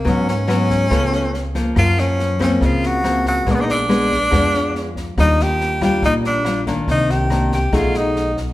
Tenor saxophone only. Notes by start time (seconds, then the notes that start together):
0.08 C#4
0.29 C#4
1.78 F4
2.00 C#4
2.43 C#4
2.65 F4
2.86 F#4
3.28 F#4
3.50 D4
3.55 B3
3.60 D4 D#4
3.71 D4
5.20 D#4
5.42 G4
5.84 G4
6.05 D#4
6.26 D4
6.91 D#4
7.11 G4
7.54 G4
7.76 F4
7.97 D#4